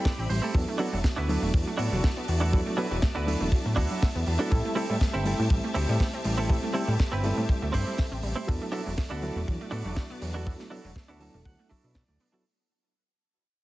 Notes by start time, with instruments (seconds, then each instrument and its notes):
Already playing: reed electric piano G3 A3 C4 E4 A4, clean electric guitar C4 E4 G4 A4, string section G4 C5 E5 B5
0.05 synth arpeggio sound A3, clean electric guitar D5, kick, snare, open hi-hat
0.18 analog synth bass A1, synth arpeggio sound C4
0.30 analog synth bass A1, synth arpeggio sound G3, clean electric guitar C5, open hi-hat
0.42 synth arpeggio sound A3, clean electric guitar C4 E4 G4 A4
0.54 analog synth bass E2, reed electric piano F#3 B3 D4 E4 A4, synth arpeggio sound F#3, string section F#4 D5 E5 A5, kick
0.68 synth arpeggio sound A3
0.78 reed electric piano F#3 B3 D4 E4 A4, synth arpeggio sound B3, clean electric guitar D4 E4 F#4 A4, open hi-hat
0.93 analog synth bass E1, synth arpeggio sound F#3
1.04 synth arpeggio sound A3, kick, snare
1.16 analog synth bass D2, synth arpeggio sound B3, clean electric guitar D4 E4 F#4 B4
1.28 reed electric piano F#3 B3 D4 E4 A4, synth arpeggio sound F#3, open hi-hat
1.42 analog synth bass E1, synth arpeggio sound A3
1.54 analog synth bass E2, synth arpeggio sound F#3, kick
1.67 synth arpeggio sound A3
1.77 analog synth bass A2, synth arpeggio sound B3, clean electric guitar D4 E4 F#4 A4, open hi-hat
1.92 analog synth bass E1, synth arpeggio sound F#3
2.04 synth arpeggio sound A3, kick, snare
2.17 synth arpeggio sound B3
2.28 analog synth bass E2, synth arpeggio sound F#3, open hi-hat
2.40 synth arpeggio sound A3, clean electric guitar D4 E4 F#4 A4
2.53 reed electric piano F#3 B3 D4 E4 A4, synth arpeggio sound F#3, kick
2.66 synth arpeggio sound A3
2.77 reed electric piano F#3 B3 D4 E4 A4, synth arpeggio sound B3, clean electric guitar D4 E4 F#4 B4, open hi-hat
2.91 analog synth bass E1, synth arpeggio sound F#3
3.02 synth arpeggio sound A3, kick, snare
3.15 analog synth bass D2, synth arpeggio sound B3, clean electric guitar D4 E4 F#4 B4
3.26 reed electric piano F#3 B3 D4 E4 A4, synth arpeggio sound F#3, open hi-hat
3.41 analog synth bass E1, synth arpeggio sound A3
3.52 synth arpeggio sound F#3, kick
3.65 analog synth bass A2, synth arpeggio sound A3
3.76 analog synth bass D2, synth arpeggio sound B3, clean electric guitar D4 E4 F#4 A4, kick, open hi-hat
3.91 synth arpeggio sound F#3
4.02 synth arpeggio sound A3, kick, snare, open hi-hat
4.15 analog synth bass E2, synth arpeggio sound B3
4.26 analog synth bass E2, synth arpeggio sound F#3, open hi-hat
4.39 reed electric piano F#3 B3 D4 E4 A4, synth arpeggio sound A3, clean electric guitar D4 E4 F#4 A4
4.51 analog synth bass A1, reed electric piano G3 A3 C4 E4 A4, synth arpeggio sound G3, string section C4 G4, kick
4.65 synth arpeggio sound A3
4.75 reed electric piano G3 A3 C4 E4 A4, clean electric guitar C4 E4 G4 A4, synth arpeggio sound C4, open hi-hat
4.90 analog synth bass A2, synth arpeggio sound G3
5.01 synth arpeggio sound A3, kick, snare
5.13 analog synth bass G1, clean electric guitar C4 E4 G4 A4, synth arpeggio sound C4
5.25 reed electric piano G3 A3 C4 E4 A4, synth arpeggio sound G3, open hi-hat
5.39 analog synth bass A2, synth arpeggio sound A3
5.50 analog synth bass A1, synth arpeggio sound G3, kick
5.64 synth arpeggio sound A3
5.74 analog synth bass D2, clean electric guitar C4 E4 G4 A4, synth arpeggio sound C4, open hi-hat
5.89 analog synth bass A2, synth arpeggio sound G3
6.00 synth arpeggio sound A3, kick, snare
6.14 synth arpeggio sound C4
6.24 analog synth bass A1, synth arpeggio sound G3, open hi-hat
6.38 synth arpeggio sound A3, clean electric guitar C4 E4 G4 A4
6.49 reed electric piano G3 A3 C4 E4 A4, synth arpeggio sound G3, kick
6.63 synth arpeggio sound A3
6.73 reed electric piano G3 A3 C4 E4 A4, clean electric guitar C4 E4 G4 A4, synth arpeggio sound C4, open hi-hat
6.88 analog synth bass A2, synth arpeggio sound G3
7.00 synth arpeggio sound A3, kick, snare
7.12 analog synth bass G1, clean electric guitar C4 E4 G4 B4, synth arpeggio sound C4
7.23 reed electric piano G3 A3 C4 E4 A4, synth arpeggio sound G3, open hi-hat
7.37 analog synth bass A2, synth arpeggio sound A3
7.49 synth arpeggio sound G3, kick
7.62 analog synth bass D2, synth arpeggio sound A3
7.73 analog synth bass G2, clean electric guitar C4 E4 G4 C5, synth arpeggio sound C4, kick, open hi-hat
7.87 synth arpeggio sound G3
7.98 synth arpeggio sound A3, kick, snare, open hi-hat
8.12 analog synth bass A1, synth arpeggio sound C4
8.23 analog synth bass A1, synth arpeggio sound G3, open hi-hat
8.36 synth arpeggio sound A3, clean electric guitar C4 E4 G4 C5
8.47 analog synth bass E2, reed electric piano F#3 B3 D4 E4 A4, synth arpeggio sound F#3, string section F#4 D5, kick
8.62 synth arpeggio sound A3
8.72 reed electric piano F#3 B3 D4 E4 A4, synth arpeggio sound B3, clean electric guitar D4 E4 F#4 A4, open hi-hat
8.86 analog synth bass E1, synth arpeggio sound F#3
8.98 synth arpeggio sound A3, kick, snare
9.10 analog synth bass D2, synth arpeggio sound B3, clean electric guitar D4 E4 F#4 A4
9.22 reed electric piano F#3 B3 D4 E4 A4, synth arpeggio sound F#3, open hi-hat
9.36 analog synth bass E1, synth arpeggio sound A3
9.48 analog synth bass E2, synth arpeggio sound F#3, kick
9.61 synth arpeggio sound A3
9.71 analog synth bass A2, synth arpeggio sound B3, clean electric guitar D4 E4 F#4 A4, open hi-hat
9.85 analog synth bass E1, synth arpeggio sound F#3
9.96 synth arpeggio sound A3, kick, snare
10.10 synth arpeggio sound B3
10.22 analog synth bass E2, synth arpeggio sound F#3, open hi-hat
10.34 synth arpeggio sound A3, clean electric guitar D4 E4 F#4 A4
10.46 reed electric piano F#3 B3 D4 E4 A4, synth arpeggio sound F#3, kick
10.59 synth arpeggio sound A3, snare
10.70 reed electric piano F#3 B3 D4 E4 A4, synth arpeggio sound B3, clean electric guitar D4 E4 F#4 A4, open hi-hat
10.84 analog synth bass E1, synth arpeggio sound F#3
10.96 synth arpeggio sound A3, kick, snare
11.08 analog synth bass D2, synth arpeggio sound B3, clean electric guitar D4 E4 F#4 A4
11.20 reed electric piano F#3 B3 D4 E4 A4, synth arpeggio sound F#3, clean electric guitar A5, open hi-hat
11.34 analog synth bass E1, synth arpeggio sound A3
11.45 analog synth bass D2, synth arpeggio sound F#3, clean electric guitar F#5, kick
11.59 synth arpeggio sound A3
11.69 synth arpeggio sound F#3, clean electric guitar D4 E4 F#4 A4 E5, kick, open hi-hat
11.84 analog synth bass B2, synth arpeggio sound D4
11.95 synth arpeggio sound F#3, clean electric guitar D5, kick, snare, open hi-hat
12.08 analog synth bass D2, synth arpeggio sound A3
12.20 synth arpeggio sound B3, open hi-hat
12.32 reed electric piano F#3 B3 D4 E4 A4, synth arpeggio sound B3, clean electric guitar D4 E4 F#4 A4